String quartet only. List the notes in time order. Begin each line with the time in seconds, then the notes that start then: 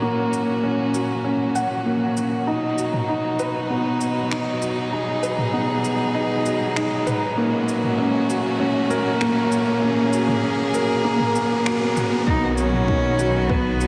Already playing: A#2 F#3 C#4 F#4
2.46 B2 F#3 D#4
4.92 G#4
7.36 A#2 C#4 F#4
9.81 G#4
12.27 D#3 F#3 B3 F#4